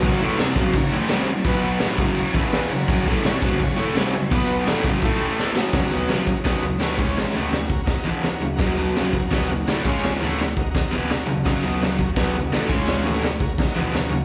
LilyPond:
<<
  \new Staff \with { instrumentName = "Transistor combo organ" } { \time 4/4 \key fis \major \tempo 4 = 168 <cis' fis' ais'>8 r8 <cis' fis' ais'>8 r8 <cis' fis' ais'>8 r8 <cis' fis' ais'>8 r8 | <b fis' b'>8 r8 <cis' fis' ais'>8 r8 <cis' fis' ais'>8 <b e' b'>4 <cis' fis' ais'>8~ | <cis' fis' ais'>8 r8 <cis' fis' cis''>8 r8 <cis' fis' cis''>8 r8 <cis' fis' gis'>8 r8 | <b fis' b'>8 r8 <cis' fis' ais'>8 r8 <a e' a'>8 r8 <a e' a'>8 <cis' fis' ais'>8 |
<cis' fis' ais'>8 r8 <cis' fis' gis'>8 <cis' fis' ais'>8 <cis' fis' ais'>8 r8 <cis' fis' ais'>8 <cis' gis' cis''>8~ | <cis' gis' cis''>8 <fis' ais' cis''>4 <fis' ais' cis''>8 <fis' ais' dis''>8 r8 <fis' ais' cis''>8 r8 | <fis' ais' dis''>8 r8 <fis' ais' cis''>8 <fis' ais' cis''>8 <fis' ais' cis''>8 r8 <fis' ais' cis''>8 <cis' gis' cis''>8~ | <cis' gis' cis''>8 <fis' ais' cis''>4 <fis' ais' dis''>8 <fis' ais' dis''>8 r8 <fis' ais' cis''>8 r8 |
<fis' ais' dis''>8 r8 <fis' ais' dis''>8 <fis' ais' cis''>8 <fis' ais' cis''>8 r8 <fis' ais' dis''>8 <cis' gis' cis''>8~ | <cis' gis' cis''>8 <fis' ais' cis''>4 <fis' ais' cis''>8 <fis' ais' dis''>8 r8 <fis' ais' cis''>8 r8 | }
  \new Staff \with { instrumentName = "Overdriven electric guitar" } { \clef bass \time 4/4 \key fis \major <fis, cis fis>8 <a, e a>8 <bis, g bis>8 <fis, cis fis>8 <fis, cis>8 <a, e a>8 <bis, g bis>8 <fis, cis>8 | <b, fis b>4 <a, e a>8 <fis, cis fis>8 r8 <e, b, e>4 <fis, cis>8 | <fis, cis fis>8 <a, e a>8 <bis, g bis>8 <fis, cis fis>8 <fis, cis>8 <a, e a>8 <bis, g bis>8 <fis, cis>8 | <b, fis b>4 <a, e a>8 <fis, cis fis>8 <a, e a>4. <b, fis b>8 |
<fis, cis fis>8 <b, fis b>8 <fis, cis fis>8 r8 <b, fis b>8 <fis, cis>8 <a, e a>8 <cis gis cis'>8~ | <cis gis cis'>8 <a, e a>8 r4. <e, b, e>8 r8 <fis, cis>8 | <fis, cis fis>8 <b, fis b>8 <fis, cis fis>8 r8 <b, fis b>8 <fis, cis>8 <a, e a>8 <cis gis cis'>8~ | <cis gis cis'>8 <a, e a>8 r4. <e, b, e>8 r8 <fis, cis>8 |
<fis, cis fis>8 <b, fis b>8 <fis, cis fis>8 r8 <b, fis b>8 <fis, cis>8 <a, e a>8 <cis gis cis'>8~ | <cis gis cis'>8 <a, e a>8 r4. <e, b, e>8 r8 <fis, cis>8 | }
  \new DrumStaff \with { instrumentName = "Drums" } \drummode { \time 4/4 <cymc bd>4 <cymc sn>8 bd8 <cymc bd>4 <cymc sn>4 | <cymc bd>4 <cymc sn>8 bd8 cymc8 bd8 <cymc sn>4 | <cymc bd>8 bd8 <cymc sn>8 bd8 <cymc bd>4 <cymc sn>4 | <cymc bd>4 <cymc sn>8 bd8 <cymc bd>4 sn8 sn8 |
<bd sn tomfh>8 tomfh8 <sn tomfh>8 <bd tomfh>8 <bd sn tomfh>8 tomfh8 <sn tomfh>8 <bd tomfh>8 | <sn tomfh>8 tomfh8 <sn tomfh>8 <bd tomfh>8 <bd sn tomfh>8 tomfh8 <sn tomfh>8 tomfh8 | <bd sn tomfh>8 tomfh8 <sn tomfh>8 <bd tomfh>8 <bd sn tomfh>8 tomfh8 <sn tomfh>8 <bd tomfh>8 | <sn tomfh>8 tomfh8 <sn tomfh>8 <bd tomfh>8 <bd sn tomfh>8 tomfh8 <sn tomfh>8 tomfh8 |
<bd sn tomfh>8 tomfh8 <sn tomfh>8 <bd tomfh>8 <bd sn tomfh>8 tomfh8 <sn tomfh>8 <bd tomfh>8 | <sn tomfh>8 tomfh8 <sn tomfh>8 <bd tomfh>8 <bd sn tomfh>8 tomfh8 <sn tomfh>8 tomfh8 | }
>>